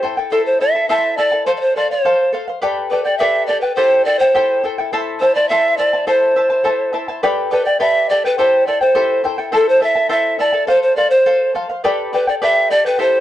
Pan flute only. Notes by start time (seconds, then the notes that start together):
0.31 A4
0.46 C5
0.60 E5
0.89 E5
1.17 D5
1.46 C5
1.57 C5 D5
1.76 D5
1.91 C5
2.90 B4
3.04 D5
3.18 E5
3.47 D5
3.61 B4
3.75 C5
4.05 D5
4.19 C5
5.20 C5
5.35 D5
5.49 E5
5.77 D5
6.08 C5
7.52 B4
7.65 D5
7.80 E5
8.09 D5
8.25 B4
8.38 C5
8.67 D5
8.82 C5
9.55 A4
9.69 C5
9.83 E5
10.11 E5
10.39 D5
10.68 C5
10.82 C5
10.96 D5
11.10 C5
12.14 B4
12.29 D5
12.42 E5
12.71 D5
12.86 B4
13.01 C5